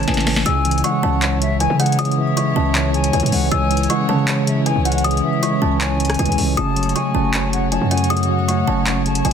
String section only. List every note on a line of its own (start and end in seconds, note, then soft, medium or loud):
0.00 0.42 A3 medium
0.00 0.43 C#4 medium
0.00 0.43 E4 medium
0.00 0.43 C#5 loud
0.46 6.53 G#3 medium
0.46 9.33 C#4 medium
0.46 6.53 E4 medium
0.46 6.53 C#5 loud
6.57 9.33 A3 medium
6.57 9.33 F#4 medium
6.57 9.33 C#5 medium